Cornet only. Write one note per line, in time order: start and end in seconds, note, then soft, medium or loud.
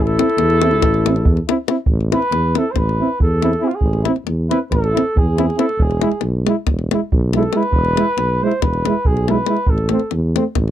0.01 0.07 G#4 medium
0.05 1.47 A4 loud
2.13 2.59 B4 loud
2.58 2.73 A4 medium
2.71 2.79 C5 medium
2.78 3.21 B4 medium
3.21 3.65 A4 medium
3.64 3.77 F4 medium
3.64 3.69 G#4 medium
3.75 4.07 G#4 medium
4.50 4.59 B4 medium
4.71 5.19 A4 medium
5.18 5.60 G#4 medium
5.59 5.83 A4 medium
5.82 6.25 G#4 medium
7.36 7.59 A4 medium
7.57 8.44 B4 loud
8.43 8.64 C5 medium
8.62 9.08 B4 medium
9.06 9.32 G#4 medium
9.30 9.71 B4 medium
9.70 10.14 A4 medium